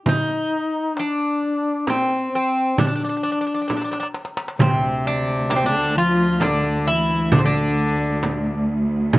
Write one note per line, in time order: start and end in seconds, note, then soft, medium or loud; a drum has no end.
0.06 0.97 D#4 medium
0.06 1.01 D#4 medium
0.06 darbuka dum medium
0.06 frame drum medium
0.96 1.89 D4 medium
0.96 darbuka tek medium
1.42 darbuka ka soft
1.87 2.31 C4 medium
1.87 2.34 C4 medium
1.87 darbuka tek medium
1.87 frame drum medium
2.31 2.74 C4 medium
2.31 2.76 C4 medium
2.31 darbuka ka soft
2.76 2.86 D4 medium
2.76 darbuka dum medium
2.76 frame drum medium
2.84 2.93 C4 soft
2.84 2.93 D4 soft
2.92 4.14 D4 medium
2.92 3.01 D4 medium
3.04 3.08 D4 soft
3.09 3.16 D4 soft
3.17 3.22 D4 soft
3.23 3.30 D4 soft
3.23 darbuka ka soft
3.32 3.38 D4 soft
3.41 3.45 D4 soft
3.47 3.53 D4 soft
3.54 3.60 D4 medium
3.62 3.67 D4 soft
3.68 3.75 D4 medium
3.68 darbuka tek soft
3.68 frame drum medium
3.77 3.83 D4 soft
3.82 3.90 D4 medium
3.82 darbuka ka medium
3.91 3.98 D4 soft
3.91 darbuka tek medium
4.00 4.06 D4 medium
4.00 darbuka ka medium
4.14 darbuka tek medium
4.25 darbuka ka medium
4.37 darbuka tek medium
4.48 darbuka ka medium
4.59 9.19 D2 medium
4.59 5.65 C3 medium
4.59 5.07 C4 medium
4.59 darbuka dum medium
4.59 frame drum medium
5.07 5.49 D4 medium
5.50 5.58 D4 medium
5.50 darbuka tek medium
5.50 frame drum medium
5.56 5.64 C4 medium
5.63 5.97 D3 medium
5.63 5.97 D4 medium
5.96 6.41 F3 medium
5.96 6.44 F4 medium
6.40 6.88 D3 medium
6.40 6.88 D4 medium
6.40 darbuka tek medium
6.40 frame drum medium
6.87 7.34 E3 medium
6.87 7.32 E4 medium
7.32 7.43 D3 medium
7.32 7.39 D4 medium
7.32 frame drum medium
7.32 darbuka dum medium
7.39 7.45 C4 medium
7.44 8.63 D3 medium
7.44 8.64 D4 medium
7.78 darbuka ka soft
8.23 darbuka tek medium
8.23 frame drum medium
8.47 darbuka ka soft
8.70 darbuka ka soft
9.13 9.19 E3 medium
9.13 frame drum medium
9.13 darbuka dum medium